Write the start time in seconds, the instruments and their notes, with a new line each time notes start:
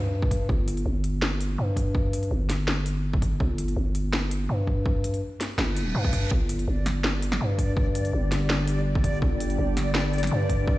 Already playing: 808-style bass G2
0.22 kick
0.31 kick, closed hi-hat
0.49 808-style bass G1, kick
0.68 closed hi-hat
0.77 closed hi-hat
0.86 808-style bass G1
1.04 closed hi-hat
1.22 snare
1.41 closed hi-hat
1.58 808-style bass G2
1.76 kick, closed hi-hat
1.95 kick
2.13 closed hi-hat
2.23 closed hi-hat
2.31 808-style bass G1
2.50 snare, closed hi-hat
2.68 snare
2.86 closed hi-hat
3.13 kick
3.22 kick, closed hi-hat
3.40 808-style bass G1, kick
3.58 closed hi-hat
3.68 closed hi-hat
3.76 808-style bass G1
3.95 closed hi-hat
4.13 snare
4.31 closed hi-hat
4.49 808-style bass G2
4.67 kick
4.86 kick
5.04 closed hi-hat
5.14 closed hi-hat
5.41 snare, closed hi-hat
5.58 808-style bass G1, snare, reverse cymbal
5.77 closed hi-hat
5.95 808-style bass G2
6.04 kick
6.13 kick, closed hi-hat
6.31 808-style bass G1, synth drone D3, synth texture D5, kick
6.49 synth drone G4, closed hi-hat
6.59 synth drone G3, closed hi-hat
6.67 808-style bass G1, synth drone D5
6.86 snare, closed hi-hat
7.04 snare
7.22 closed hi-hat
7.32 snare
7.41 808-style bass G2
7.58 kick, closed hi-hat
7.77 kick
7.95 closed hi-hat
8.05 closed hi-hat
8.13 808-style bass G1
8.32 snare, closed hi-hat
8.50 snare
8.68 closed hi-hat
8.95 kick
9.04 kick, closed hi-hat
9.22 808-style bass G1, kick
9.40 closed hi-hat
9.50 closed hi-hat
9.58 808-style bass G1
9.77 snare, closed hi-hat
9.95 snare
10.13 closed hi-hat
10.18 closed hi-hat
10.23 snare, closed hi-hat
10.27 closed hi-hat
10.31 808-style bass G2
10.49 kick, closed hi-hat
10.67 kick